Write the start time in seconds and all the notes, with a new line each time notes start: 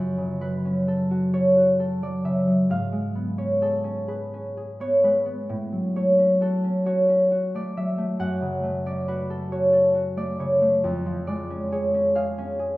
Already playing: F#2 C#4
0.18 C#3
0.41 F#3 B4
0.65 C#4
0.88 A4
1.11 F#4
1.33 A4 C#5
1.57 F#4
1.80 A4
2.02 F#3 D5
2.24 C#3 E5
2.47 F#3
2.70 G#2 F5
2.92 G#3
3.15 B3
3.38 C#4 C#5
3.61 G#4 A4
3.84 C#4
4.08 G#4 B4
4.34 C#4
4.57 G#4
4.80 B3 C#5
5.03 G#3 B4
5.26 B3
5.49 A2
5.72 F#3
5.95 A3 C#5
6.18 C#4
6.41 F#4 A4
6.64 C#4
6.86 F#4 C#5
7.09 C#4
7.31 F#4
7.55 A3 D5
7.77 F#3 E5
7.98 A3
8.19 F#2 F#5
8.41 C#3
8.63 A3
8.86 C#4 D5
9.08 F#4 B4
9.30 A4
9.52 F#4 C#5
9.73 A4
9.94 F#4
10.17 A3 D5
10.39 C#3 C#5
10.61 A3
10.84 F2
11.06 F3
11.27 G#3 D5
11.50 C#4
11.72 G#4 C#5
11.94 C#4
12.15 G#4 F5
12.38 C#4
12.59 G#4